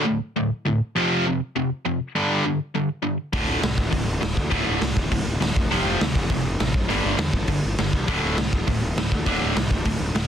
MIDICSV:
0, 0, Header, 1, 4, 480
1, 0, Start_track
1, 0, Tempo, 296736
1, 1548, Time_signature, 4, 2, 24, 8
1, 16613, End_track
2, 0, Start_track
2, 0, Title_t, "Distorted electric guitar"
2, 0, Program_c, 0, 30
2, 86, Note_on_c, 0, 38, 73
2, 87, Note_on_c, 0, 45, 82
2, 312, Note_off_c, 0, 38, 0
2, 312, Note_off_c, 0, 45, 0
2, 585, Note_on_c, 0, 38, 75
2, 586, Note_on_c, 0, 45, 92
2, 802, Note_off_c, 0, 38, 0
2, 803, Note_off_c, 0, 45, 0
2, 1058, Note_on_c, 0, 38, 68
2, 1076, Note_on_c, 0, 45, 85
2, 1279, Note_off_c, 0, 38, 0
2, 1288, Note_off_c, 0, 45, 0
2, 1547, Note_on_c, 0, 41, 83
2, 1562, Note_on_c, 0, 48, 82
2, 1574, Note_on_c, 0, 53, 86
2, 2015, Note_off_c, 0, 41, 0
2, 2022, Note_off_c, 0, 48, 0
2, 2028, Note_off_c, 0, 53, 0
2, 2048, Note_on_c, 0, 41, 78
2, 2050, Note_on_c, 0, 48, 85
2, 2255, Note_off_c, 0, 41, 0
2, 2257, Note_off_c, 0, 48, 0
2, 2520, Note_on_c, 0, 41, 70
2, 2521, Note_on_c, 0, 48, 93
2, 2732, Note_off_c, 0, 41, 0
2, 2732, Note_off_c, 0, 48, 0
2, 3000, Note_on_c, 0, 41, 65
2, 3003, Note_on_c, 0, 48, 76
2, 3213, Note_off_c, 0, 41, 0
2, 3214, Note_off_c, 0, 48, 0
2, 3483, Note_on_c, 0, 43, 88
2, 3492, Note_on_c, 0, 50, 89
2, 3498, Note_on_c, 0, 55, 97
2, 3945, Note_off_c, 0, 43, 0
2, 3945, Note_off_c, 0, 50, 0
2, 3952, Note_off_c, 0, 55, 0
2, 3965, Note_on_c, 0, 43, 76
2, 3965, Note_on_c, 0, 50, 80
2, 4176, Note_off_c, 0, 43, 0
2, 4176, Note_off_c, 0, 50, 0
2, 4442, Note_on_c, 0, 43, 72
2, 4451, Note_on_c, 0, 50, 83
2, 4655, Note_off_c, 0, 43, 0
2, 4659, Note_off_c, 0, 50, 0
2, 4890, Note_on_c, 0, 43, 65
2, 4897, Note_on_c, 0, 50, 79
2, 5119, Note_off_c, 0, 43, 0
2, 5122, Note_off_c, 0, 50, 0
2, 5384, Note_on_c, 0, 38, 80
2, 5385, Note_on_c, 0, 45, 89
2, 5394, Note_on_c, 0, 50, 83
2, 5806, Note_off_c, 0, 38, 0
2, 5820, Note_off_c, 0, 45, 0
2, 5826, Note_on_c, 0, 38, 79
2, 5840, Note_on_c, 0, 45, 80
2, 5860, Note_off_c, 0, 50, 0
2, 6067, Note_off_c, 0, 38, 0
2, 6074, Note_off_c, 0, 45, 0
2, 6321, Note_on_c, 0, 38, 80
2, 6328, Note_on_c, 0, 45, 94
2, 6554, Note_off_c, 0, 38, 0
2, 6558, Note_off_c, 0, 45, 0
2, 6807, Note_on_c, 0, 38, 76
2, 6810, Note_on_c, 0, 45, 78
2, 7037, Note_off_c, 0, 38, 0
2, 7038, Note_off_c, 0, 45, 0
2, 7285, Note_on_c, 0, 45, 87
2, 7287, Note_on_c, 0, 38, 82
2, 7301, Note_on_c, 0, 50, 87
2, 7765, Note_off_c, 0, 45, 0
2, 7766, Note_off_c, 0, 38, 0
2, 7774, Note_off_c, 0, 50, 0
2, 7786, Note_on_c, 0, 38, 73
2, 7786, Note_on_c, 0, 45, 80
2, 8006, Note_off_c, 0, 45, 0
2, 8007, Note_off_c, 0, 38, 0
2, 8276, Note_on_c, 0, 38, 80
2, 8278, Note_on_c, 0, 45, 93
2, 8491, Note_off_c, 0, 38, 0
2, 8492, Note_off_c, 0, 45, 0
2, 8740, Note_on_c, 0, 38, 74
2, 8749, Note_on_c, 0, 45, 79
2, 8963, Note_off_c, 0, 38, 0
2, 8967, Note_off_c, 0, 45, 0
2, 9234, Note_on_c, 0, 41, 91
2, 9237, Note_on_c, 0, 48, 91
2, 9260, Note_on_c, 0, 53, 101
2, 9699, Note_off_c, 0, 41, 0
2, 9700, Note_off_c, 0, 48, 0
2, 9712, Note_off_c, 0, 53, 0
2, 9724, Note_on_c, 0, 41, 81
2, 9729, Note_on_c, 0, 48, 84
2, 9934, Note_off_c, 0, 41, 0
2, 9937, Note_off_c, 0, 48, 0
2, 10201, Note_on_c, 0, 41, 74
2, 10202, Note_on_c, 0, 48, 83
2, 10412, Note_off_c, 0, 41, 0
2, 10413, Note_off_c, 0, 48, 0
2, 10686, Note_on_c, 0, 48, 80
2, 10688, Note_on_c, 0, 41, 71
2, 10895, Note_off_c, 0, 48, 0
2, 10896, Note_off_c, 0, 41, 0
2, 11135, Note_on_c, 0, 43, 91
2, 11156, Note_on_c, 0, 50, 91
2, 11160, Note_on_c, 0, 55, 94
2, 11589, Note_off_c, 0, 43, 0
2, 11596, Note_off_c, 0, 50, 0
2, 11608, Note_on_c, 0, 43, 83
2, 11615, Note_on_c, 0, 50, 83
2, 11621, Note_off_c, 0, 55, 0
2, 11835, Note_off_c, 0, 43, 0
2, 11839, Note_off_c, 0, 50, 0
2, 12102, Note_on_c, 0, 50, 86
2, 12104, Note_on_c, 0, 43, 81
2, 12322, Note_off_c, 0, 50, 0
2, 12323, Note_off_c, 0, 43, 0
2, 12600, Note_on_c, 0, 43, 74
2, 12609, Note_on_c, 0, 50, 76
2, 12811, Note_off_c, 0, 43, 0
2, 12815, Note_off_c, 0, 50, 0
2, 13065, Note_on_c, 0, 38, 90
2, 13077, Note_on_c, 0, 45, 89
2, 13077, Note_on_c, 0, 50, 97
2, 13532, Note_off_c, 0, 38, 0
2, 13538, Note_off_c, 0, 45, 0
2, 13538, Note_off_c, 0, 50, 0
2, 13555, Note_on_c, 0, 45, 85
2, 13557, Note_on_c, 0, 38, 81
2, 13768, Note_off_c, 0, 45, 0
2, 13769, Note_off_c, 0, 38, 0
2, 14030, Note_on_c, 0, 38, 82
2, 14032, Note_on_c, 0, 45, 83
2, 14245, Note_off_c, 0, 38, 0
2, 14246, Note_off_c, 0, 45, 0
2, 14530, Note_on_c, 0, 38, 67
2, 14531, Note_on_c, 0, 45, 66
2, 14735, Note_off_c, 0, 38, 0
2, 14735, Note_off_c, 0, 45, 0
2, 14986, Note_on_c, 0, 38, 79
2, 14998, Note_on_c, 0, 45, 89
2, 15003, Note_on_c, 0, 50, 102
2, 15452, Note_off_c, 0, 38, 0
2, 15458, Note_off_c, 0, 45, 0
2, 15460, Note_off_c, 0, 50, 0
2, 15479, Note_on_c, 0, 38, 79
2, 15482, Note_on_c, 0, 45, 86
2, 15689, Note_off_c, 0, 38, 0
2, 15690, Note_off_c, 0, 45, 0
2, 15949, Note_on_c, 0, 38, 76
2, 15958, Note_on_c, 0, 45, 90
2, 16164, Note_off_c, 0, 38, 0
2, 16168, Note_off_c, 0, 45, 0
2, 16419, Note_on_c, 0, 38, 67
2, 16427, Note_on_c, 0, 45, 84
2, 16613, Note_off_c, 0, 38, 0
2, 16613, Note_off_c, 0, 45, 0
2, 16613, End_track
3, 0, Start_track
3, 0, Title_t, "Picked electric bass"
3, 0, Program_c, 1, 34
3, 5402, Note_on_c, 1, 26, 90
3, 5561, Note_off_c, 1, 26, 0
3, 5640, Note_on_c, 1, 26, 84
3, 5800, Note_off_c, 1, 26, 0
3, 5876, Note_on_c, 1, 36, 86
3, 6037, Note_off_c, 1, 36, 0
3, 6113, Note_on_c, 1, 26, 82
3, 6275, Note_off_c, 1, 26, 0
3, 6357, Note_on_c, 1, 26, 88
3, 6518, Note_off_c, 1, 26, 0
3, 6571, Note_on_c, 1, 26, 77
3, 6741, Note_off_c, 1, 26, 0
3, 6835, Note_on_c, 1, 26, 89
3, 6996, Note_off_c, 1, 26, 0
3, 7081, Note_on_c, 1, 38, 83
3, 7241, Note_off_c, 1, 38, 0
3, 7322, Note_on_c, 1, 26, 88
3, 7481, Note_off_c, 1, 26, 0
3, 7546, Note_on_c, 1, 26, 89
3, 7711, Note_off_c, 1, 26, 0
3, 7786, Note_on_c, 1, 36, 80
3, 7951, Note_off_c, 1, 36, 0
3, 8046, Note_on_c, 1, 26, 90
3, 8204, Note_off_c, 1, 26, 0
3, 8280, Note_on_c, 1, 26, 78
3, 8440, Note_off_c, 1, 26, 0
3, 8505, Note_on_c, 1, 26, 77
3, 8669, Note_off_c, 1, 26, 0
3, 8742, Note_on_c, 1, 26, 91
3, 8908, Note_off_c, 1, 26, 0
3, 9011, Note_on_c, 1, 29, 84
3, 9167, Note_off_c, 1, 29, 0
3, 9221, Note_on_c, 1, 29, 86
3, 9386, Note_off_c, 1, 29, 0
3, 9464, Note_on_c, 1, 29, 82
3, 9629, Note_off_c, 1, 29, 0
3, 9727, Note_on_c, 1, 38, 94
3, 9884, Note_off_c, 1, 38, 0
3, 9957, Note_on_c, 1, 29, 87
3, 10117, Note_off_c, 1, 29, 0
3, 10202, Note_on_c, 1, 29, 88
3, 10360, Note_off_c, 1, 29, 0
3, 10419, Note_on_c, 1, 29, 79
3, 10585, Note_off_c, 1, 29, 0
3, 10673, Note_on_c, 1, 33, 94
3, 10911, Note_off_c, 1, 33, 0
3, 10911, Note_on_c, 1, 31, 83
3, 11073, Note_off_c, 1, 31, 0
3, 11158, Note_on_c, 1, 31, 93
3, 11317, Note_off_c, 1, 31, 0
3, 11393, Note_on_c, 1, 31, 89
3, 11554, Note_off_c, 1, 31, 0
3, 11613, Note_on_c, 1, 40, 87
3, 11780, Note_off_c, 1, 40, 0
3, 11860, Note_on_c, 1, 31, 94
3, 12025, Note_off_c, 1, 31, 0
3, 12115, Note_on_c, 1, 31, 86
3, 12275, Note_off_c, 1, 31, 0
3, 12374, Note_on_c, 1, 31, 84
3, 12527, Note_off_c, 1, 31, 0
3, 12592, Note_on_c, 1, 31, 93
3, 12753, Note_off_c, 1, 31, 0
3, 12845, Note_on_c, 1, 36, 81
3, 13001, Note_off_c, 1, 36, 0
3, 13071, Note_on_c, 1, 26, 90
3, 13232, Note_off_c, 1, 26, 0
3, 13314, Note_on_c, 1, 26, 83
3, 13474, Note_off_c, 1, 26, 0
3, 13534, Note_on_c, 1, 36, 88
3, 13700, Note_off_c, 1, 36, 0
3, 13798, Note_on_c, 1, 26, 84
3, 13957, Note_off_c, 1, 26, 0
3, 14041, Note_on_c, 1, 26, 91
3, 14198, Note_off_c, 1, 26, 0
3, 14256, Note_on_c, 1, 26, 77
3, 14421, Note_off_c, 1, 26, 0
3, 14489, Note_on_c, 1, 26, 91
3, 14657, Note_off_c, 1, 26, 0
3, 14760, Note_on_c, 1, 38, 84
3, 14917, Note_off_c, 1, 38, 0
3, 14996, Note_on_c, 1, 26, 101
3, 15154, Note_off_c, 1, 26, 0
3, 15227, Note_on_c, 1, 26, 89
3, 15389, Note_off_c, 1, 26, 0
3, 15457, Note_on_c, 1, 36, 88
3, 15622, Note_off_c, 1, 36, 0
3, 15708, Note_on_c, 1, 26, 91
3, 15869, Note_off_c, 1, 26, 0
3, 15944, Note_on_c, 1, 26, 93
3, 16106, Note_off_c, 1, 26, 0
3, 16173, Note_on_c, 1, 26, 88
3, 16339, Note_off_c, 1, 26, 0
3, 16407, Note_on_c, 1, 26, 87
3, 16575, Note_off_c, 1, 26, 0
3, 16613, End_track
4, 0, Start_track
4, 0, Title_t, "Drums"
4, 5388, Note_on_c, 9, 46, 52
4, 5391, Note_on_c, 9, 36, 89
4, 5549, Note_off_c, 9, 46, 0
4, 5553, Note_off_c, 9, 36, 0
4, 5873, Note_on_c, 9, 46, 55
4, 5881, Note_on_c, 9, 38, 116
4, 6035, Note_off_c, 9, 46, 0
4, 6043, Note_off_c, 9, 38, 0
4, 6112, Note_on_c, 9, 36, 88
4, 6274, Note_off_c, 9, 36, 0
4, 6351, Note_on_c, 9, 36, 93
4, 6359, Note_on_c, 9, 46, 52
4, 6512, Note_off_c, 9, 36, 0
4, 6521, Note_off_c, 9, 46, 0
4, 6834, Note_on_c, 9, 46, 58
4, 6842, Note_on_c, 9, 38, 116
4, 6995, Note_off_c, 9, 46, 0
4, 7004, Note_off_c, 9, 38, 0
4, 7071, Note_on_c, 9, 36, 88
4, 7233, Note_off_c, 9, 36, 0
4, 7297, Note_on_c, 9, 46, 51
4, 7307, Note_on_c, 9, 36, 88
4, 7459, Note_off_c, 9, 46, 0
4, 7469, Note_off_c, 9, 36, 0
4, 7787, Note_on_c, 9, 46, 59
4, 7795, Note_on_c, 9, 38, 110
4, 7949, Note_off_c, 9, 46, 0
4, 7957, Note_off_c, 9, 38, 0
4, 8035, Note_on_c, 9, 36, 85
4, 8197, Note_off_c, 9, 36, 0
4, 8277, Note_on_c, 9, 46, 57
4, 8278, Note_on_c, 9, 36, 98
4, 8439, Note_off_c, 9, 46, 0
4, 8440, Note_off_c, 9, 36, 0
4, 8764, Note_on_c, 9, 46, 64
4, 8773, Note_on_c, 9, 38, 104
4, 8926, Note_off_c, 9, 46, 0
4, 8934, Note_off_c, 9, 38, 0
4, 9000, Note_on_c, 9, 36, 98
4, 9162, Note_off_c, 9, 36, 0
4, 9249, Note_on_c, 9, 46, 54
4, 9411, Note_off_c, 9, 46, 0
4, 9721, Note_on_c, 9, 46, 59
4, 9729, Note_on_c, 9, 38, 112
4, 9883, Note_off_c, 9, 46, 0
4, 9891, Note_off_c, 9, 38, 0
4, 9955, Note_on_c, 9, 36, 91
4, 10116, Note_off_c, 9, 36, 0
4, 10187, Note_on_c, 9, 46, 51
4, 10190, Note_on_c, 9, 36, 95
4, 10349, Note_off_c, 9, 46, 0
4, 10352, Note_off_c, 9, 36, 0
4, 10675, Note_on_c, 9, 46, 54
4, 10683, Note_on_c, 9, 38, 118
4, 10837, Note_off_c, 9, 46, 0
4, 10845, Note_off_c, 9, 38, 0
4, 10908, Note_on_c, 9, 36, 96
4, 11069, Note_off_c, 9, 36, 0
4, 11159, Note_on_c, 9, 46, 48
4, 11321, Note_off_c, 9, 46, 0
4, 11620, Note_on_c, 9, 46, 59
4, 11628, Note_on_c, 9, 38, 117
4, 11782, Note_off_c, 9, 46, 0
4, 11790, Note_off_c, 9, 38, 0
4, 11864, Note_on_c, 9, 36, 89
4, 12026, Note_off_c, 9, 36, 0
4, 12092, Note_on_c, 9, 46, 58
4, 12102, Note_on_c, 9, 36, 90
4, 12253, Note_off_c, 9, 46, 0
4, 12264, Note_off_c, 9, 36, 0
4, 12589, Note_on_c, 9, 46, 59
4, 12597, Note_on_c, 9, 38, 117
4, 12750, Note_off_c, 9, 46, 0
4, 12758, Note_off_c, 9, 38, 0
4, 12830, Note_on_c, 9, 36, 84
4, 12992, Note_off_c, 9, 36, 0
4, 13073, Note_on_c, 9, 36, 86
4, 13073, Note_on_c, 9, 46, 55
4, 13235, Note_off_c, 9, 36, 0
4, 13235, Note_off_c, 9, 46, 0
4, 13548, Note_on_c, 9, 46, 61
4, 13556, Note_on_c, 9, 38, 121
4, 13710, Note_off_c, 9, 46, 0
4, 13718, Note_off_c, 9, 38, 0
4, 13797, Note_on_c, 9, 36, 88
4, 13959, Note_off_c, 9, 36, 0
4, 14038, Note_on_c, 9, 36, 98
4, 14038, Note_on_c, 9, 46, 55
4, 14200, Note_off_c, 9, 36, 0
4, 14200, Note_off_c, 9, 46, 0
4, 14516, Note_on_c, 9, 46, 54
4, 14524, Note_on_c, 9, 38, 120
4, 14678, Note_off_c, 9, 46, 0
4, 14686, Note_off_c, 9, 38, 0
4, 14750, Note_on_c, 9, 36, 86
4, 14912, Note_off_c, 9, 36, 0
4, 14978, Note_on_c, 9, 46, 53
4, 14986, Note_on_c, 9, 36, 88
4, 15140, Note_off_c, 9, 46, 0
4, 15148, Note_off_c, 9, 36, 0
4, 15469, Note_on_c, 9, 46, 60
4, 15477, Note_on_c, 9, 38, 121
4, 15631, Note_off_c, 9, 46, 0
4, 15639, Note_off_c, 9, 38, 0
4, 15703, Note_on_c, 9, 36, 85
4, 15865, Note_off_c, 9, 36, 0
4, 15936, Note_on_c, 9, 46, 53
4, 15943, Note_on_c, 9, 36, 93
4, 16098, Note_off_c, 9, 46, 0
4, 16105, Note_off_c, 9, 36, 0
4, 16424, Note_on_c, 9, 46, 64
4, 16432, Note_on_c, 9, 38, 114
4, 16586, Note_off_c, 9, 46, 0
4, 16594, Note_off_c, 9, 38, 0
4, 16613, End_track
0, 0, End_of_file